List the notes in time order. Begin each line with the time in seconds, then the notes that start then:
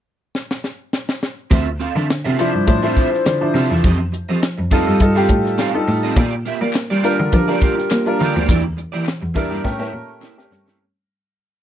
0.35 snare
0.51 snare
0.64 snare
0.93 snare
1.09 snare
1.23 snare
1.50 D2 C4 F4 A4 E5, kick, closed hi-hat
1.80 C4 F4 A4 F5, closed hi-hat
1.95 D3 C4 F4 A4 E5
2.09 muted clean electric guitar stroke, snare, closed hi-hat
2.24 C3 C4 F4 A4 E5
2.37 F3 C4 D4 E4 F4 A4 C5 E5, closed hi-hat
2.53 G2, muted clean electric guitar stroke
2.67 A2 F3 D4 E4 C5, muted clean electric guitar stroke, kick, closed hi-hat
2.83 F3 C4 D4 E4 F4 A4 C5 E5
2.96 C4 F4 A4 E5, kick, closed hi-hat
3.11 muted clean electric guitar stroke, snare
3.25 D3, muted clean electric guitar stroke, snare, closed hi-hat
3.41 F3 D4 E4 C5, muted clean electric guitar stroke
3.54 C3 C4 F4 A4 E5, open hi-hat
3.70 E2 C4 F4 A4 E5
3.83 F2 C4 G4 A4 D#5, kick, closed hi-hat
3.99 muted clean electric guitar stroke
4.12 muted clean electric guitar stroke, closed hi-hat
4.29 F3 C4 G4 A4 D#5
4.42 muted clean electric guitar stroke, snare, closed hi-hat
4.58 F2, muted clean electric guitar stroke
4.71 G3 C4 D#4 F4 G4 A4 D#5, kick, closed hi-hat
4.87 G2 C4 G4 A4 D#5
5.00 G2 G3 D#4 F4 A4, muted clean electric guitar stroke, kick, closed hi-hat
5.15 G3 C4 D#4 F4 G4 A4 F5
5.29 A2, muted clean electric guitar stroke, kick, closed hi-hat
5.45 muted clean electric guitar stroke, snare
5.58 C4 G4 A4 F5, snare, closed hi-hat
5.74 G3 D#4 F4 A4, muted clean electric guitar stroke
5.88 A2, muted clean electric guitar stroke, open hi-hat
6.03 C4 G4 A4 D#5
6.16 A#2 A#3 F4 G4 D5, kick, closed hi-hat
6.45 A#3 F4 G4 E5, closed hi-hat
6.61 A#3 F4 G4 D5
6.73 muted clean electric guitar stroke, snare, clap, closed hi-hat
6.90 G3 A#3 F4 G4 D5, snare
7.03 G3 A#3 D4 F4 G4 A#4 D5, snare, closed hi-hat
7.19 D3, muted clean electric guitar stroke
7.32 F3 G3 D4 F4 A#4, muted clean electric guitar stroke, kick, closed hi-hat
7.47 G3 A#3 D4 F4 G4 A#4 D5
7.61 A#3 F4 G4 D5, kick, closed hi-hat
7.77 muted clean electric guitar stroke, snare
7.90 A#3, muted clean electric guitar stroke, snare, clap, closed hi-hat
8.06 G3 D4 F4 A#4, muted clean electric guitar stroke
8.19 D3 A#3 F4 G4 D5, open hi-hat
8.35 D2 A#3 F4 G4 D5
8.48 E2 A#3 E4 G4 D5, kick, closed hi-hat
8.64 muted clean electric guitar stroke
8.77 muted clean electric guitar stroke, closed hi-hat
8.92 E3 A#3 E4 G4 D5
9.05 muted clean electric guitar stroke, snare, clap, closed hi-hat
9.21 E2, muted clean electric guitar stroke
9.34 G3 A#3 D4 E4 G4 A#4 D5, kick, closed hi-hat
9.50 G2 A#3 E4 G4 D5
9.63 A2 A3 C#4 G4 A#4, muted clean electric guitar stroke, kick, snare
9.78 A3 A#3 C#4 E4 G4 A#4 E5
9.92 A#2, muted clean electric guitar stroke
10.08 muted clean electric guitar stroke
10.20 A#3 E4 G4 E5, snare, clap
10.36 A3 C4 G4 A#4, muted clean electric guitar stroke, snare
10.44 C#4
10.50 G2, muted clean electric guitar stroke, snare
10.66 A#3 E4 G4 C#5, snare